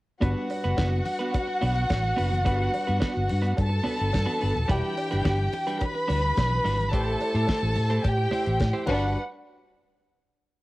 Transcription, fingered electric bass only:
0.22 0.33 G1 loud
0.65 0.75 F#1 medium
0.78 0.99 F#1 loud
1.63 1.83 B1 medium
1.91 2.11 A1 medium
2.19 2.46 F#1 medium
2.46 2.67 G1 loud
2.89 2.99 G2 medium
3.17 3.27 G1 medium
3.32 3.52 G2 loud
3.58 3.79 G2 medium
4.01 4.11 G1 medium
4.15 4.25 G2 medium
4.43 4.53 G1 medium
4.57 4.67 D#1 medium
4.70 4.80 E1 loud
5.13 5.23 G1 medium
5.26 5.46 G1 loud
6.10 6.30 D2 medium
6.38 6.58 B1 medium
6.65 6.94 G#1 medium
6.94 7.14 A1 loud
7.34 7.45 A2 medium
7.63 7.73 A1 loud
7.77 7.97 A2 medium
8.05 8.25 A2 loud
8.47 8.57 A1 medium
8.61 8.71 A2 medium
8.89 9.15 G1 medium

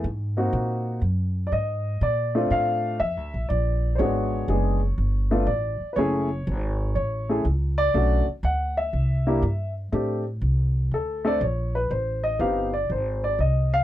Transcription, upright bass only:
0.04 0.52 G#2 medium
0.53 1.01 A#2 medium
1.02 1.50 F#2 medium
1.52 2.00 G#2 medium
2.01 2.49 A#2 medium
2.51 2.99 A2 medium
3.00 3.17 F2 medium
3.17 3.33 D2 medium
3.34 3.49 A#1 medium
3.50 3.98 A#1 medium
3.99 4.47 G#1 medium
4.48 4.96 F#1 medium
4.98 5.46 G1 medium
5.47 5.78 A1 medium
5.80 muted upright bass stroke soft
5.96 6.44 F#1 medium
6.47 6.94 G#1 medium
6.96 7.44 A1 medium
7.45 7.93 C#2 medium
7.94 8.25 B1 medium
8.27 muted upright bass stroke soft
8.43 8.91 D2 medium
8.93 9.41 C2 medium
9.42 9.90 G2 medium
9.92 10.40 A2 medium
10.41 10.89 C2 medium
10.91 11.39 D2 medium
11.41 11.89 A#1 medium
11.91 12.38 A1 medium
12.39 12.87 G1 medium
12.90 13.37 G#1 medium
13.39 13.84 C2 medium

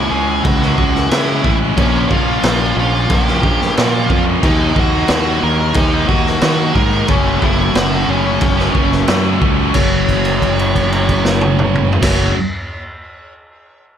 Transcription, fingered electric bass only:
0.12 0.40 C#2 medium
0.45 0.74 C#2 loud
0.78 1.07 C#2 medium
1.11 1.40 C#3 loud
1.45 1.73 A1 loud
1.77 2.06 A#1 loud
2.11 2.39 A#1 medium
2.43 2.72 A#1 loud
2.77 3.06 A#1 medium
3.10 3.39 A#1 loud
3.43 3.72 A#1 medium
3.78 4.06 A#2 loud
4.10 4.39 F2 loud
4.43 4.72 D#2 loud
4.76 5.05 D#2 medium
5.10 5.39 D#2 loud
5.43 5.72 D#2 medium
5.75 6.05 D#2 loud
6.08 6.38 D#2 medium
6.42 6.71 D#3 loud
6.75 7.04 G#2 loud
7.09 7.38 F#1 loud
7.42 7.71 F#1 medium
7.75 8.04 F#1 medium
8.08 8.38 F#1 medium
8.42 8.71 F#1 loud
8.75 9.04 F#1 medium
9.09 9.38 F#2 loud
9.41 9.71 C#2 loud
9.75 11.91 F#1 loud
12.02 12.31 F#1 loud

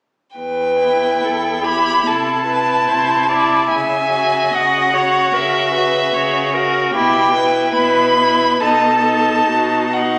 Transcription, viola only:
0.38 1.25 B4 soft
1.24 1.65 A4 soft
1.64 2.09 G4 soft
2.08 2.45 A4 soft
2.45 2.90 B4 soft
2.88 3.30 C5 soft
3.29 3.68 D5 soft
3.69 4.54 E5 soft
4.52 4.95 D#5 soft
4.94 5.35 C#5 soft
5.33 5.71 A#4 soft
5.72 6.15 B4 medium
6.13 6.55 C#5 soft
6.54 6.93 A#4 soft
6.93 7.35 G4 soft
7.33 8.62 B4 medium
8.61 9.48 A4 medium
9.47 10.19 F#4 soft

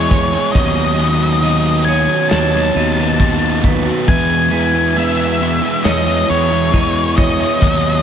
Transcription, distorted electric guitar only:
0.00 0.52 E3 loud
0.00 0.52 G#3 loud
0.00 0.34 B3 loud
0.00 0.32 E4 loud
0.00 0.31 G#4 loud
0.32 0.55 B3 medium
0.32 0.53 E4 medium
0.32 0.52 G#4 medium
0.54 0.96 D#3 medium
0.54 0.98 F#3 medium
0.54 0.99 B3 medium
0.54 0.99 F#4 medium
0.98 1.40 D#3 medium
0.98 1.21 F#3 medium
0.98 1.20 B3 medium
0.98 1.18 F#4 medium
1.19 1.41 F#3 medium
1.19 1.43 B3 medium
1.19 1.43 F#4 medium
1.41 1.84 D#3 loud
1.41 1.85 F#3 loud
1.41 1.87 B3 loud
1.41 1.87 F#4 loud
1.86 2.53 D#3 medium
1.86 2.10 F#3 medium
1.86 2.09 B3 medium
1.86 2.07 F#4 loud
2.08 2.54 F#3 medium
2.08 2.54 B3 medium
2.08 2.51 F#4 medium
2.53 2.74 F#3 medium
2.53 2.76 B3 medium
2.53 2.76 F#4 medium
2.75 3.18 D#3 medium
2.75 2.98 F#3 loud
2.75 2.97 B3 loud
2.75 2.96 F#4 loud
2.97 3.19 F#3 medium
2.97 3.20 B3 medium
2.97 3.20 F#4 medium
3.19 4.05 D#3 loud
3.19 3.87 F#3 loud
3.19 3.87 B3 loud
3.19 3.84 F#4 loud
3.85 4.07 F#3 medium
3.85 4.09 B3 medium
3.85 4.05 F#4 medium
4.07 4.50 E3 medium
4.07 4.51 G#3 loud
4.07 4.53 B3 loud
4.07 4.53 E4 loud
4.51 4.94 E3 medium
4.51 4.75 G#3 medium
4.51 4.75 B3 medium
4.51 4.73 E4 loud
4.74 4.96 G#3 medium
4.74 4.97 B3 medium
4.74 4.97 E4 medium
4.95 5.39 E3 loud
4.95 5.40 G#3 loud
4.95 5.42 B3 loud
4.95 5.41 E4 loud
5.40 6.07 E3 medium
5.40 5.63 G#3 medium
5.40 5.63 B3 medium
5.40 5.61 E4 medium
5.62 6.07 G#3 medium
5.62 6.07 B3 medium
5.62 6.05 E4 medium
6.06 6.28 G#3 medium
6.06 6.30 B3 medium
6.06 6.29 E4 medium
6.28 6.71 E3 medium
6.28 6.51 G#3 medium
6.28 6.51 B3 loud
6.28 6.49 E4 loud
6.50 6.72 G#3 medium
6.50 6.73 B3 medium
6.50 6.73 E4 medium
6.72 7.59 E3 loud
6.72 7.40 G#3 loud
6.72 7.40 B3 loud
6.72 7.37 E4 loud
7.38 7.60 G#3 medium
7.38 7.63 B3 medium
7.38 7.59 E4 medium
7.61 8.02 D#3 loud
7.61 8.02 F#3 medium
7.61 8.02 B3 medium
7.61 8.02 D#4 loud

